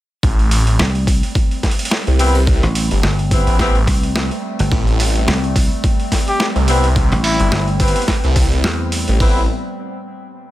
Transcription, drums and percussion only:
0.23 kick loud
0.23 open hi-hat soft
0.39 open hi-hat soft
0.51 open hi-hat medium
0.67 open hi-hat soft
0.79 snare loud
0.79 open hi-hat soft
0.95 open hi-hat soft
1.07 kick loud
1.07 open hi-hat medium
1.23 open hi-hat soft
1.35 kick loud
1.35 open hi-hat soft
1.51 open hi-hat soft
1.63 kick medium
1.63 snare medium
1.63 open hi-hat soft
1.71 open hi-hat soft
1.79 open hi-hat soft
1.85 open hi-hat medium
1.91 snare loud
2.07 open hi-hat soft
2.19 open hi-hat medium
2.35 open hi-hat soft
2.47 kick loud
2.47 open hi-hat soft
2.63 snare soft
2.63 open hi-hat soft
2.75 open hi-hat medium
2.91 open hi-hat soft
3.03 snare loud
3.03 open hi-hat soft
3.19 open hi-hat soft
3.31 kick loud
3.31 open hi-hat medium
3.47 open hi-hat soft
3.59 kick medium
3.59 snare medium
3.59 open hi-hat soft
3.75 open hi-hat soft
3.87 kick loud
3.87 open hi-hat medium
4.03 open hi-hat soft
4.16 snare loud
4.16 open hi-hat soft
4.31 open hi-hat soft
4.59 open hi-hat soft
4.71 kick loud
4.71 open hi-hat soft
4.87 open hi-hat soft
5.00 open hi-hat medium
5.16 open hi-hat soft
5.28 snare loud
5.28 open hi-hat soft
5.44 open hi-hat soft
5.56 kick loud
5.56 open hi-hat medium
5.84 kick loud
5.84 open hi-hat soft
6.00 open hi-hat soft
6.12 kick medium
6.12 snare medium
6.12 open hi-hat medium
6.28 open hi-hat soft
6.40 snare loud
6.40 open hi-hat soft
6.56 open hi-hat soft
6.68 open hi-hat medium
6.84 open hi-hat soft
6.96 kick loud
6.96 open hi-hat soft
7.12 snare soft
7.12 open hi-hat soft
7.24 open hi-hat medium
7.40 open hi-hat soft
7.52 snare loud
7.52 open hi-hat soft
7.68 open hi-hat soft
7.80 kick loud
7.80 open hi-hat medium
7.88 open hi-hat medium
7.96 open hi-hat soft
8.02 open hi-hat soft
8.08 kick medium
8.08 snare medium
8.08 open hi-hat soft
8.24 open hi-hat soft
8.36 kick loud
8.36 open hi-hat medium
8.52 open hi-hat soft
8.64 snare loud
8.64 open hi-hat soft
8.92 open hi-hat medium
9.08 open hi-hat soft
9.20 kick loud
9.20 open hi-hat loud

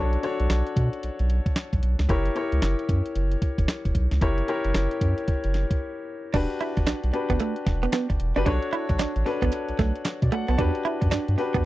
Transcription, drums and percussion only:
0.13 closed hi-hat soft
0.23 closed hi-hat medium
0.40 closed hi-hat medium
0.50 snare loud
0.50 clap medium
0.50 closed hi-hat medium
0.67 closed hi-hat soft
0.76 kick medium
0.76 closed hi-hat medium
0.93 closed hi-hat medium
1.03 closed hi-hat medium
1.19 closed hi-hat medium
1.30 closed hi-hat medium
1.46 kick medium
1.46 closed hi-hat medium
1.56 snare loud
1.56 clap medium
1.56 closed hi-hat medium
1.73 kick loud
1.73 closed hi-hat medium
1.83 closed hi-hat medium
1.99 snare medium
1.99 closed hi-hat medium
2.09 kick loud
2.09 closed hi-hat medium
2.25 closed hi-hat soft
2.36 closed hi-hat medium
2.52 closed hi-hat medium
2.62 snare medium
2.62 clap medium
2.62 closed hi-hat medium
2.79 closed hi-hat soft
2.89 kick medium
2.89 closed hi-hat medium
3.06 closed hi-hat medium
3.15 closed hi-hat medium
3.32 closed hi-hat medium
3.42 kick medium
3.42 closed hi-hat medium
3.58 kick medium
3.58 closed hi-hat medium
3.68 snare loud
3.68 clap medium
3.68 closed hi-hat medium
3.85 kick medium
3.85 closed hi-hat medium
3.95 kick medium
3.95 closed hi-hat medium
4.11 snare medium
4.11 closed hi-hat medium
4.21 kick loud
4.21 closed hi-hat medium
4.38 closed hi-hat soft
4.48 closed hi-hat medium
4.64 closed hi-hat medium
4.74 snare loud
4.74 clap medium
4.74 closed hi-hat medium
4.91 closed hi-hat soft
5.01 kick medium
5.01 closed hi-hat medium
5.18 closed hi-hat soft
5.28 kick loud
5.28 closed hi-hat medium
5.44 closed hi-hat medium
5.54 snare medium
5.54 closed hi-hat medium
5.71 kick loud
5.71 closed hi-hat medium
6.34 kick loud
6.34 closed hi-hat medium
6.34 crash medium
6.50 closed hi-hat soft
6.61 closed hi-hat medium
6.77 kick medium
6.77 closed hi-hat medium
6.87 snare loud
6.87 clap medium
6.87 closed hi-hat medium
7.04 closed hi-hat soft
7.14 closed hi-hat medium
7.30 kick medium
7.30 closed hi-hat medium
7.40 clap medium
7.40 closed hi-hat medium
7.56 closed hi-hat medium
7.67 kick medium
7.67 snare medium
7.67 closed hi-hat medium
7.83 closed hi-hat medium
7.93 snare loud
7.93 clap medium
7.93 closed hi-hat medium
8.10 kick medium
8.10 closed hi-hat medium
8.20 closed hi-hat medium
8.36 closed hi-hat medium
8.46 kick loud
8.46 closed hi-hat medium
8.62 closed hi-hat soft
8.73 closed hi-hat medium
8.89 kick loud
8.89 closed hi-hat medium
8.99 snare loud
8.99 clap medium
8.99 closed hi-hat medium
9.16 closed hi-hat medium
9.26 open hi-hat medium
9.42 kick medium
9.42 closed hi-hat medium
9.52 clap medium
9.52 closed hi-hat medium
9.69 closed hi-hat soft
9.79 kick medium
9.79 snare medium
9.79 closed hi-hat medium
9.96 closed hi-hat medium
10.05 snare loud
10.05 clap medium
10.05 closed hi-hat medium
10.22 kick medium
10.22 closed hi-hat medium
10.32 closed hi-hat medium
10.48 closed hi-hat medium
10.59 kick loud
10.59 closed hi-hat medium
10.75 closed hi-hat soft
10.85 closed hi-hat medium
11.02 kick loud
11.02 closed hi-hat medium
11.11 snare medium
11.11 clap medium
11.11 closed hi-hat medium
11.28 closed hi-hat soft
11.38 open hi-hat medium
11.54 kick medium
11.54 closed hi-hat medium

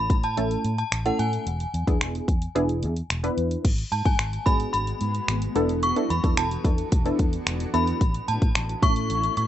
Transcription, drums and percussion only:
0.10 kick medium
0.10 closed hi-hat medium
0.23 closed hi-hat soft
0.37 closed hi-hat medium
0.51 closed hi-hat soft
0.65 closed hi-hat medium
0.78 closed hi-hat medium
0.92 finger snap loud
0.92 closed hi-hat loud
1.06 closed hi-hat medium
1.19 closed hi-hat medium
1.33 closed hi-hat medium
1.47 closed hi-hat medium
1.60 closed hi-hat medium
1.74 closed hi-hat medium
1.87 kick medium
1.87 closed hi-hat soft
2.01 finger snap loud
2.01 closed hi-hat medium
2.15 closed hi-hat soft
2.28 kick medium
2.28 closed hi-hat medium
2.42 closed hi-hat medium
2.56 closed hi-hat medium
2.69 closed hi-hat soft
2.83 closed hi-hat medium
2.96 closed hi-hat medium
3.10 finger snap loud
3.10 closed hi-hat loud
3.24 closed hi-hat medium
3.38 closed hi-hat medium
3.51 closed hi-hat medium
3.65 kick medium
3.65 closed hi-hat medium
3.65 crash medium
3.78 closed hi-hat medium
3.92 closed hi-hat medium
4.06 kick medium
4.06 closed hi-hat soft
4.19 finger snap loud
4.19 closed hi-hat medium
4.33 closed hi-hat soft
4.46 kick medium
4.46 closed hi-hat medium
4.60 closed hi-hat medium
4.74 closed hi-hat loud
4.87 closed hi-hat soft
5.01 closed hi-hat medium
5.15 closed hi-hat medium
5.28 finger snap loud
5.28 closed hi-hat loud
5.42 closed hi-hat medium
5.56 closed hi-hat medium
5.69 closed hi-hat medium
5.83 closed hi-hat medium
5.96 closed hi-hat medium
6.10 closed hi-hat medium
6.24 kick medium
6.24 closed hi-hat soft
6.37 finger snap loud
6.37 closed hi-hat medium
6.51 closed hi-hat medium
6.65 kick medium
6.65 closed hi-hat medium
6.78 closed hi-hat medium
6.92 kick medium
6.92 closed hi-hat loud
7.06 closed hi-hat medium
7.19 kick medium
7.19 closed hi-hat medium
7.33 closed hi-hat medium
7.47 finger snap loud
7.47 closed hi-hat loud
7.60 closed hi-hat medium
7.74 closed hi-hat medium
7.87 closed hi-hat medium
8.01 kick medium
8.01 closed hi-hat medium
8.14 closed hi-hat medium
8.28 closed hi-hat medium
8.42 kick medium
8.42 closed hi-hat soft
8.55 finger snap loud
8.55 closed hi-hat medium
8.69 closed hi-hat medium
8.83 kick medium
8.83 closed hi-hat medium
8.96 closed hi-hat medium
9.10 closed hi-hat loud
9.23 closed hi-hat soft
9.37 closed hi-hat medium

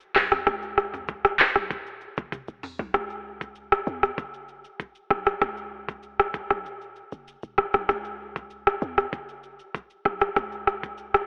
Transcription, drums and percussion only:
0.00 shaker medium
0.16 cross-stick medium
0.16 clap medium
0.16 mid tom medium
0.16 open hi-hat medium
0.16 shaker medium
0.31 cross-stick medium
0.31 mid tom loud
0.31 shaker medium
0.47 kick loud
0.47 cross-stick loud
0.47 shaker medium
0.62 shaker medium
0.78 cross-stick medium
0.78 shaker soft
0.94 mid tom loud
0.94 shaker medium
1.08 kick loud
1.08 shaker medium
1.25 cross-stick loud
1.25 shaker medium
1.39 clap loud
1.39 open hi-hat medium
1.39 shaker medium
1.55 cross-stick medium
1.55 shaker medium
1.71 kick loud
1.71 shaker medium
1.87 shaker soft
2.01 shaker medium
2.17 kick medium
2.17 shaker medium
2.32 kick medium
2.32 high tom medium
2.32 shaker medium
2.48 shaker soft
2.63 mid tom loud
2.63 open hi-hat medium
2.63 shaker medium
2.79 floor tom loud
2.79 shaker medium
2.94 kick loud
2.94 cross-stick loud
2.94 shaker medium
3.10 shaker medium
3.41 kick medium
3.41 shaker medium
3.55 shaker medium
3.72 cross-stick loud
3.72 shaker medium
3.87 shaker soft
4.03 cross-stick medium
4.03 shaker medium
4.18 kick medium
4.18 shaker medium
4.34 shaker soft
4.48 shaker soft
4.64 shaker medium
4.80 kick medium
4.80 shaker medium
4.95 shaker soft
5.11 kick medium
5.11 cross-stick medium
5.26 cross-stick medium
5.26 shaker medium
5.42 kick loud
5.42 cross-stick loud
5.42 shaker medium
5.57 shaker medium
5.89 kick medium
5.89 shaker medium
6.03 shaker medium
6.20 cross-stick loud
6.20 shaker medium
6.34 kick medium
6.34 shaker soft
6.50 cross-stick medium
6.50 shaker medium
6.66 shaker medium
6.81 shaker soft
6.96 shaker soft
7.12 shaker medium
7.28 shaker medium
7.43 shaker soft
7.58 kick medium
7.58 cross-stick medium
7.74 cross-stick medium
7.74 shaker medium
7.89 kick loud
7.89 cross-stick loud
7.89 shaker medium
8.05 shaker medium
8.36 kick medium
8.36 shaker medium
8.50 shaker medium
8.67 cross-stick loud
8.67 shaker medium
8.82 shaker soft
8.98 cross-stick medium
8.98 shaker medium
9.13 kick medium
9.13 shaker medium
9.29 shaker soft
9.43 shaker soft
9.59 shaker medium
9.75 kick medium
9.75 shaker medium
9.90 shaker soft
10.05 kick medium
10.05 cross-stick medium
10.21 cross-stick medium
10.21 shaker medium
10.36 kick loud
10.36 cross-stick medium
10.36 shaker medium
10.52 shaker medium
10.67 cross-stick medium
10.67 shaker soft
10.83 kick medium
10.83 shaker soft
10.98 shaker medium
11.14 cross-stick loud
11.14 shaker medium

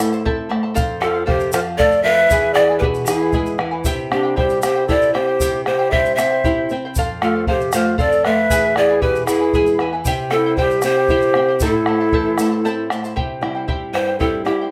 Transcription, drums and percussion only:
0.00 bombo rim medium
0.13 shaker soft
0.26 bombo low medium
0.51 bombo rim medium
0.76 bombo low medium
0.76 shaker medium
1.02 bombo rim medium
1.15 bombo rim soft
1.28 bombo low medium
1.40 shaker soft
1.53 bombo rim medium
1.53 shaker medium
1.79 bombo low medium
1.79 shaker soft
1.91 shaker soft
2.30 bombo low medium
2.30 shaker medium
2.56 bombo rim medium
2.69 bombo rim soft
2.82 bombo low medium
2.94 shaker soft
3.07 bombo rim medium
3.07 shaker medium
3.32 bombo low medium
3.32 shaker soft
3.46 shaker soft
3.59 bombo rim medium
3.84 bombo low medium
3.84 shaker medium
4.12 bombo rim medium
4.24 bombo rim soft
4.38 bombo low medium
4.50 shaker soft
4.62 bombo rim medium
4.62 shaker medium
4.89 bombo low medium
4.89 shaker soft
5.02 shaker soft
5.15 bombo rim medium
5.40 bombo rim soft
5.40 bombo low medium
5.40 shaker loud
5.53 bombo rim soft
5.66 bombo rim medium
5.93 bombo rim soft
5.93 bombo low medium
6.05 shaker soft
6.18 bombo rim medium
6.18 shaker loud
6.44 bombo low medium
6.44 shaker soft
6.70 shaker soft
6.95 bombo low medium
6.95 shaker loud
7.22 bombo rim medium
7.35 bombo rim soft
7.47 bombo low medium
7.60 shaker soft
7.72 bombo rim medium
7.72 shaker loud
7.98 bombo low medium
7.98 shaker soft
8.12 shaker soft
8.25 bombo rim medium
8.50 bombo low medium
8.50 shaker medium
8.76 bombo rim medium
8.89 bombo rim soft
9.02 bombo low medium
9.15 shaker soft
9.27 bombo rim medium
9.27 shaker loud
9.53 bombo low medium
9.53 shaker soft
9.66 shaker soft
9.79 bombo rim medium
10.05 bombo low medium
10.05 shaker loud
10.31 bombo rim medium
10.44 bombo rim soft
10.57 bombo low medium
10.70 shaker soft
10.82 bombo rim medium
10.82 shaker loud
11.08 bombo low medium
11.08 shaker soft
11.21 shaker soft
11.34 bombo rim medium
11.60 bombo low medium
11.60 shaker loud
11.74 bombo rim soft
11.86 bombo rim medium
12.12 bombo low medium
12.38 bombo rim medium
12.38 shaker medium
12.52 bombo rim soft
12.64 bombo rim soft
12.64 shaker soft
12.90 bombo rim medium
12.90 shaker soft
13.04 bombo rim soft
13.04 shaker soft
13.17 bombo low medium
13.43 bombo rim medium
13.68 bombo low medium
13.95 bombo rim medium
14.21 bombo low medium
14.47 bombo rim medium

